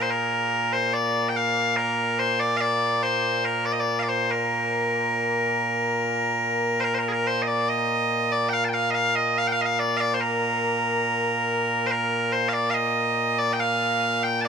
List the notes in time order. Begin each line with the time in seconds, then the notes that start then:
Already playing: A#2 A#3
0.02 C5
0.10 A#4
0.73 C5
0.94 D5
1.29 G5
1.36 F5
1.77 A#4
2.19 C5
2.40 D5
2.57 D5 F5
3.03 C5
3.45 A#4
3.66 D5
3.72 D#5
3.80 D5
3.99 D5 F5
4.09 C5
4.31 A#4
6.80 A#4 C5
6.94 C5
6.98 A#4
7.09 G#4 A#4
7.27 C5
7.42 D#5
7.48 D5
7.69 D#5
8.32 D5
8.49 F5 G5
8.64 A5
8.69 G5
8.74 F5
8.91 D#5 F5
9.16 D#5
9.38 F5
9.47 G5
9.52 F5
9.62 D#5 F5
9.79 D5
9.97 D5 F5
10.14 C5
10.20 A#4
11.86 C5
11.91 A#4
12.32 C5
12.49 F5
12.53 D5
12.70 D#5 F5
13.39 D5
13.53 G5
13.60 F5
14.23 G5
14.41 A5